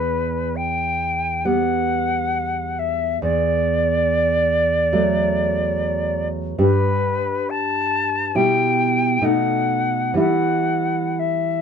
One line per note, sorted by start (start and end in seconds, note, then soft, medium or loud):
0.00 3.19 E2 soft
0.00 0.57 B4 medium
0.56 1.46 G5 medium
1.45 3.18 G3 soft
1.45 3.18 B3 soft
1.45 2.80 F#5 medium
2.79 3.22 E5 medium
3.22 6.54 E2 soft
3.22 6.27 D5 medium
4.93 6.54 F#3 soft
4.93 6.55 A3 soft
6.58 8.31 G2 soft
6.58 8.31 G3 soft
6.58 8.32 D4 soft
6.58 7.51 B4 medium
7.49 8.37 A5 medium
8.35 9.20 B2 soft
8.35 9.19 G3 soft
8.35 9.19 E4 soft
8.35 9.25 G5 medium
9.22 10.16 B2 soft
9.22 10.15 A3 soft
9.22 10.15 D#4 soft
9.22 10.18 F#5 medium
10.14 11.62 E3 soft
10.14 11.62 G3 soft
10.14 11.62 E4 soft
10.18 11.20 F#5 medium
11.19 11.62 E5 soft